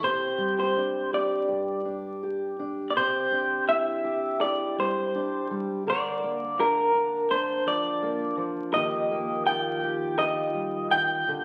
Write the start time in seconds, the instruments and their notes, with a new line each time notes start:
0.02 steel-string acoustic guitar C3 G4, clean electric guitar C5
0.38 steel-string acoustic guitar G3
0.60 clean electric guitar C5
0.76 steel-string acoustic guitar D4
1.13 steel-string acoustic guitar G4, clean electric guitar D5
1.48 steel-string acoustic guitar G2
1.85 steel-string acoustic guitar D4
2.23 steel-string acoustic guitar G4
2.59 steel-string acoustic guitar D4
2.90 clean electric guitar D5
2.96 steel-string acoustic guitar C3 G4, clean electric guitar C5
3.31 steel-string acoustic guitar D4
3.69 steel-string acoustic guitar E4, clean electric guitar E5
4.04 steel-string acoustic guitar G4
4.41 steel-string acoustic guitar E4, clean electric guitar D5
4.78 steel-string acoustic guitar G3, clean electric guitar C5
5.15 steel-string acoustic guitar D4
5.51 steel-string acoustic guitar G3
5.87 steel-string acoustic guitar D3 A#4, clean electric guitar D5
6.23 steel-string acoustic guitar A#3
6.59 steel-string acoustic guitar D4, clean electric guitar A#4
6.95 steel-string acoustic guitar D4
7.31 steel-string acoustic guitar D4, clean electric guitar C5
7.66 steel-string acoustic guitar F3, clean electric guitar D5
8.02 steel-string acoustic guitar A#3
8.37 steel-string acoustic guitar F3
8.73 fretless electric bass D#2, steel-string acoustic guitar D#3 G4, clean electric guitar D#5
9.11 steel-string acoustic guitar A#3
9.47 steel-string acoustic guitar F4, clean electric guitar G5
9.83 steel-string acoustic guitar G4
10.18 steel-string acoustic guitar F4, clean electric guitar D#5
10.54 steel-string acoustic guitar G3
10.91 steel-string acoustic guitar D#3, clean electric guitar G5
11.28 steel-string acoustic guitar D3